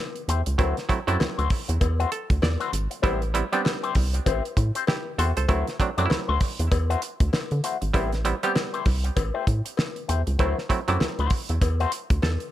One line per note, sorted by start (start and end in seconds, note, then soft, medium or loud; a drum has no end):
0.16 closed hi-hat soft
0.28 0.43 E2 medium
0.28 0.41 A3 medium
0.28 0.41 E4 medium
0.28 0.41 G4 medium
0.28 0.41 C5 medium
0.28 closed hi-hat medium
0.46 0.56 C#2 medium
0.46 muted clean electric guitar stroke medium
0.46 closed hi-hat soft
0.58 0.73 D2 loud
0.58 0.78 F#3 medium
0.58 0.74 A3 medium
0.58 0.78 A3 medium
0.58 0.78 C4 medium
0.58 0.74 E4 medium
0.58 0.78 E4 medium
0.58 0.75 F#4 medium
0.58 0.75 C5 medium
0.58 kick loud
0.58 closed hi-hat medium
0.58 cowbell medium
0.77 snare soft
0.77 closed hi-hat soft
0.89 0.99 F#3 medium
0.89 0.99 A3 medium
0.89 0.99 C4 medium
0.89 0.99 E4 medium
0.89 muted clean electric guitar stroke soft
0.89 kick medium
0.89 closed hi-hat medium
1.07 1.17 F#2 medium
1.07 1.73 F#3 medium
1.07 1.74 A3 medium
1.07 1.16 A3 medium
1.07 1.74 C4 medium
1.07 1.16 E4 medium
1.07 1.74 E4 loud
1.07 1.16 F#4 medium
1.07 1.16 D5 medium
1.07 closed hi-hat soft
1.19 1.27 D2 medium
1.19 muted clean electric guitar stroke soft
1.19 snare loud
1.19 cowbell medium
1.38 1.48 D2 medium
1.38 1.49 A3 medium
1.38 1.49 E4 medium
1.38 1.49 F#4 medium
1.38 1.48 C5 medium
1.38 closed hi-hat soft
1.50 muted clean electric guitar stroke soft
1.50 kick medium
1.50 open hi-hat medium
1.68 1.79 E2 loud
1.68 muted clean electric guitar stroke soft
1.68 closed hi-hat medium
1.80 2.06 E2 loud
1.80 muted clean electric guitar stroke soft
1.80 kick medium
1.80 closed hi-hat medium
1.80 cowbell medium
1.99 2.10 A3 medium
1.99 2.10 E4 medium
1.99 2.10 F#4 medium
1.99 2.10 C5 medium
1.99 closed hi-hat soft
2.11 2.40 A4 medium
2.11 muted clean electric guitar stroke soft
2.11 closed hi-hat medium
2.30 2.40 D2 medium
2.30 muted clean electric guitar stroke soft
2.30 kick loud
2.30 closed hi-hat medium
2.42 2.57 E2 medium
2.42 3.00 D5 medium
2.42 snare loud
2.42 cowbell medium
2.60 2.71 A3 medium
2.60 2.71 E4 medium
2.60 2.71 F#4 medium
2.60 2.71 C5 medium
2.60 closed hi-hat soft
2.73 2.88 G#1 medium
2.73 closed hi-hat medium
2.91 muted clean electric guitar stroke soft
2.91 closed hi-hat soft
3.02 3.43 A1 loud
3.02 3.23 G3 medium
3.02 3.23 B3 medium
3.02 3.19 C4 medium
3.02 3.23 C4 medium
3.02 3.19 E4 medium
3.02 3.23 E4 loud
3.02 3.19 G4 loud
3.02 3.19 C5 medium
3.02 kick loud
3.02 closed hi-hat medium
3.02 cowbell medium
3.22 closed hi-hat soft
3.34 3.44 G3 medium
3.34 3.44 B3 medium
3.34 3.45 C4 medium
3.34 3.45 E4 medium
3.34 muted clean electric guitar stroke soft
3.34 closed hi-hat medium
3.52 4.19 G3 medium
3.52 4.19 B3 medium
3.52 3.61 C4 medium
3.52 4.19 C4 medium
3.52 4.19 D4 medium
3.52 3.61 E4 medium
3.52 3.61 G4 medium
3.52 3.60 D5 medium
3.52 closed hi-hat soft
3.65 muted clean electric guitar stroke soft
3.65 snare loud
3.65 cowbell medium
3.83 3.94 C4 medium
3.83 3.94 E4 medium
3.83 3.94 G4 medium
3.83 3.93 C5 medium
3.83 closed hi-hat soft
3.95 4.20 C2 loud
3.95 kick medium
3.95 open hi-hat medium
4.13 muted clean electric guitar stroke soft
4.13 closed hi-hat medium
4.26 4.41 A1 medium
4.26 4.42 C4 medium
4.26 4.42 E4 loud
4.26 4.42 G4 medium
4.26 4.42 C5 medium
4.26 kick medium
4.26 closed hi-hat medium
4.26 cowbell medium
4.45 closed hi-hat soft
4.57 4.72 A2 loud
4.57 muted clean electric guitar stroke soft
4.57 kick medium
4.57 closed hi-hat medium
4.75 4.84 C4 medium
4.75 4.84 E4 medium
4.75 4.83 G4 medium
4.75 4.83 C5 medium
4.75 closed hi-hat medium
4.87 5.17 E4 medium
4.87 5.17 G4 medium
4.87 muted clean electric guitar stroke soft
4.87 snare loud
4.87 cowbell medium
5.18 5.33 E2 loud
5.18 5.30 C4 medium
5.18 5.31 E4 medium
5.18 5.36 F#4 medium
5.18 5.31 G4 medium
5.18 5.36 A4 medium
5.18 5.31 C5 medium
5.18 closed hi-hat medium
5.37 5.47 C#2 medium
5.37 5.66 A4 medium
5.37 5.66 C5 medium
5.37 muted clean electric guitar stroke soft
5.37 closed hi-hat medium
5.48 5.64 D2 loud
5.48 5.68 F#3 medium
5.48 5.64 A3 medium
5.48 5.68 A3 medium
5.48 5.69 C4 medium
5.48 5.65 E4 medium
5.48 5.69 E4 loud
5.48 5.65 F#4 medium
5.48 5.65 C5 medium
5.48 kick loud
5.48 closed hi-hat medium
5.48 cowbell medium
5.67 snare soft
5.67 closed hi-hat soft
5.79 5.90 F#3 medium
5.79 5.90 A3 medium
5.79 5.90 C4 medium
5.79 5.90 D4 loud
5.79 muted clean electric guitar stroke soft
5.79 kick medium
5.79 closed hi-hat medium
5.97 6.08 F#2 medium
5.97 6.64 F#3 medium
5.97 6.06 A3 soft
5.97 6.64 A3 medium
5.97 6.64 C4 medium
5.97 6.04 D4 medium
5.97 6.06 E4 medium
5.97 6.06 F#4 medium
5.97 6.06 D5 medium
5.97 closed hi-hat soft
6.06 6.68 E4 medium
6.10 6.17 D2 soft
6.10 muted clean electric guitar stroke soft
6.10 snare loud
6.10 cowbell medium
6.28 6.38 D2 loud
6.28 6.39 A3 medium
6.28 6.39 E4 medium
6.28 6.39 F#4 medium
6.28 6.39 C5 medium
6.40 muted clean electric guitar stroke soft
6.40 kick medium
6.40 open hi-hat medium
6.59 6.69 E2 medium
6.59 muted clean electric guitar stroke soft
6.59 closed hi-hat medium
6.71 6.96 E2 medium
6.71 muted clean electric guitar stroke soft
6.71 kick medium
6.71 closed hi-hat medium
6.71 cowbell medium
6.90 7.01 A3 medium
6.90 7.01 E4 medium
6.90 7.00 F#4 medium
6.90 7.00 C5 medium
6.90 closed hi-hat soft
7.02 muted clean electric guitar stroke soft
7.02 closed hi-hat medium
7.20 7.30 D2 loud
7.20 muted clean electric guitar stroke soft
7.20 kick loud
7.20 closed hi-hat medium
7.32 muted clean electric guitar stroke soft
7.32 snare loud
7.32 cowbell medium
7.51 7.61 D3 medium
7.51 closed hi-hat soft
7.63 7.76 A3 medium
7.63 7.76 E4 medium
7.63 7.76 F#4 medium
7.63 7.76 C5 medium
7.63 closed hi-hat medium
7.81 7.92 G#1 medium
7.81 muted clean electric guitar stroke soft
7.81 closed hi-hat soft
7.94 8.33 A1 loud
7.94 8.13 G3 medium
7.94 8.10 A3 medium
7.94 8.14 B3 medium
7.94 8.14 C4 medium
7.94 8.10 E4 medium
7.94 8.14 E4 medium
7.94 8.10 G4 medium
7.94 8.10 C5 medium
7.94 kick loud
7.94 closed hi-hat medium
7.94 cowbell medium
8.12 snare soft
8.12 closed hi-hat soft
8.25 8.35 G3 medium
8.25 8.35 B3 medium
8.25 8.35 C4 medium
8.25 8.35 E4 medium
8.25 muted clean electric guitar stroke soft
8.25 closed hi-hat medium
8.43 9.09 G3 medium
8.43 8.52 A3 medium
8.43 9.09 B3 medium
8.43 9.10 C4 medium
8.43 8.52 E4 medium
8.43 8.51 G4 medium
8.43 9.10 G4 medium
8.43 8.51 D5 medium
8.43 closed hi-hat soft
8.56 snare loud
8.56 cowbell medium
8.73 8.84 A3 medium
8.73 8.84 E4 medium
8.73 8.84 G4 medium
8.73 8.84 C5 medium
8.73 closed hi-hat soft
8.86 9.10 C2 loud
8.86 muted clean electric guitar stroke soft
8.86 kick medium
8.86 open hi-hat medium
9.04 muted clean electric guitar stroke soft
9.04 closed hi-hat medium
9.16 9.31 A1 loud
9.16 muted clean electric guitar stroke soft
9.16 kick medium
9.16 closed hi-hat medium
9.16 cowbell medium
9.34 9.45 A3 medium
9.34 9.45 E4 medium
9.34 9.45 G4 medium
9.34 9.45 C5 medium
9.47 9.62 A2 loud
9.47 kick medium
9.47 closed hi-hat medium
9.65 muted clean electric guitar stroke soft
9.65 closed hi-hat medium
9.77 muted clean electric guitar stroke soft
9.77 snare loud
9.77 cowbell medium
9.96 closed hi-hat soft
10.08 10.24 E2 medium
10.08 10.21 A3 medium
10.08 10.21 E4 medium
10.08 10.21 G4 medium
10.08 10.21 C5 medium
10.08 closed hi-hat medium
10.27 10.37 C#2 medium
10.27 muted clean electric guitar stroke soft
10.27 closed hi-hat soft
10.39 10.54 D2 loud
10.39 10.59 F#3 medium
10.39 10.55 A3 medium
10.39 10.59 A3 medium
10.39 10.59 C4 medium
10.39 10.55 E4 medium
10.39 10.59 E4 medium
10.39 10.55 F#4 medium
10.39 10.55 C5 loud
10.39 kick loud
10.39 closed hi-hat medium
10.39 cowbell medium
10.58 snare soft
10.69 10.80 F#3 medium
10.69 10.80 A3 medium
10.69 10.80 C4 medium
10.69 10.80 E4 medium
10.69 muted clean electric guitar stroke soft
10.69 kick medium
10.69 closed hi-hat medium
10.88 10.98 F#2 medium
10.88 11.54 F#3 medium
10.88 11.54 A3 medium
10.88 10.97 A3 soft
10.88 11.54 C4 medium
10.88 11.54 E4 medium
10.88 10.97 E4 soft
10.88 10.97 F#4 medium
10.88 10.96 D5 medium
10.88 closed hi-hat soft
11.00 11.08 D2 soft
11.00 muted clean electric guitar stroke soft
11.00 snare loud
11.00 cowbell medium
11.19 11.29 D2 loud
11.19 11.30 A3 medium
11.19 11.31 E4 medium
11.19 11.31 F#4 medium
11.19 11.31 C5 medium
11.19 closed hi-hat soft
11.30 muted clean electric guitar stroke soft
11.30 kick medium
11.30 open hi-hat medium
11.49 11.59 E2 medium
11.49 muted clean electric guitar stroke soft
11.49 closed hi-hat medium
11.62 11.86 E2 medium
11.62 muted clean electric guitar stroke soft
11.62 kick medium
11.62 closed hi-hat medium
11.62 cowbell medium
11.80 11.91 A3 medium
11.80 11.91 E4 medium
11.80 11.91 F#4 medium
11.80 11.90 C5 medium
11.80 closed hi-hat soft
11.92 muted clean electric guitar stroke soft
11.92 closed hi-hat medium
12.10 12.20 D2 medium
12.10 muted clean electric guitar stroke soft
12.10 kick loud
12.10 closed hi-hat medium
12.22 12.38 E2 loud
12.22 12.52 A4 medium
12.22 snare loud
12.22 cowbell medium
12.40 closed hi-hat soft